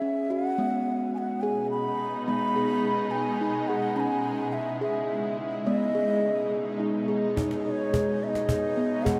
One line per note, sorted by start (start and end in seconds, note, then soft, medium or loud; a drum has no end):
0.00 0.30 C#4 medium
0.00 0.33 E5 medium
0.30 0.58 F#4 medium
0.30 1.14 F#5 medium
0.58 3.94 B2 medium
0.58 2.24 G#3 medium
0.58 7.33 G#3 medium
0.58 1.15 B3 medium
0.58 3.94 D#4 medium
1.14 1.43 F#5 medium
1.14 1.19 G#5 medium
1.41 1.99 G#4 medium
1.41 1.70 G#5 medium
1.71 2.23 B5 medium
2.26 3.94 G#3 medium
2.26 2.56 B3 medium
2.26 3.12 B5 loud
2.56 3.12 G#4 medium
3.11 3.69 G#5 medium
3.41 3.69 D#4 medium
3.68 3.97 G#4 medium
3.68 3.98 F#5 medium
3.96 5.66 C#3 medium
3.96 5.63 C#4 medium
3.96 5.66 E4 medium
3.96 4.54 G#5 medium
3.96 4.01 B5 medium
4.53 4.81 E5 medium
4.81 5.38 G#4 medium
4.81 5.36 E5 medium
5.66 7.34 B2 medium
5.66 7.33 G#3 medium
5.66 5.95 B3 medium
5.66 7.35 D#4 medium
5.66 6.75 D#5 loud
5.95 6.51 G#4 medium
6.79 7.08 D#4 medium
7.08 7.36 G#4 medium
7.37 9.20 B2 medium
7.37 9.02 G#3 medium
7.37 9.20 G#3 medium
7.37 7.93 D#4 medium
7.37 9.20 D#4 medium
7.37 cajon bass soft
7.51 cajon slap soft
7.66 7.72 D#5 medium
7.71 8.25 C#5 medium
7.93 8.49 G#4 medium
7.93 cajon bass soft
8.23 8.29 E5 medium
8.28 9.08 D#5 medium
8.35 cajon slap soft
8.49 cajon bass medium
8.77 9.05 B3 medium
9.05 9.20 G#3 medium
9.05 9.20 G#4 medium
9.05 9.20 F#5 loud
9.05 cajon bass medium